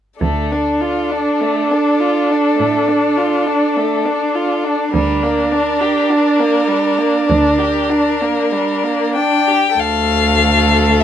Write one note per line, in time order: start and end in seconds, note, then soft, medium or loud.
0.20 1.20 D2 soft
0.20 0.54 A3 soft
0.20 4.90 D4 soft
0.20 4.90 A4 soft
0.52 0.83 D4 soft
0.82 1.13 F4 soft
1.12 1.43 D4 soft
1.42 1.73 A3 soft
1.71 2.01 D4 soft
2.00 2.32 F4 soft
2.31 2.58 D4 soft
2.59 3.54 A2 soft
2.59 2.90 A3 soft
2.88 3.19 D4 soft
3.18 3.48 F4 soft
3.47 3.78 D4 soft
3.76 4.07 A3 soft
4.06 4.37 D4 soft
4.36 4.66 F4 soft
4.65 4.94 D4 soft
4.94 5.89 D2 soft
4.94 5.25 G3 soft
4.94 9.54 D4 soft
4.94 9.12 A#4 soft
5.23 5.53 A#3 soft
5.52 5.83 D4 soft
5.81 6.12 G4 soft
6.10 6.41 D4 soft
6.40 6.69 A#3 soft
6.68 7.00 G3 soft
6.98 7.28 A#3 soft
7.29 8.29 D2 soft
7.29 7.61 D4 soft
7.59 7.91 G4 soft
7.90 8.23 D4 soft
8.22 8.53 A#3 soft
8.51 8.85 G3 soft
8.84 9.17 A#3 soft
9.15 9.49 D4 soft
9.15 9.81 G5 medium
9.48 9.78 G4 soft
9.78 11.04 D2 soft
9.78 11.04 A3 soft
9.78 11.04 A4 soft
9.78 11.02 F5 medium
11.00 11.04 E5 medium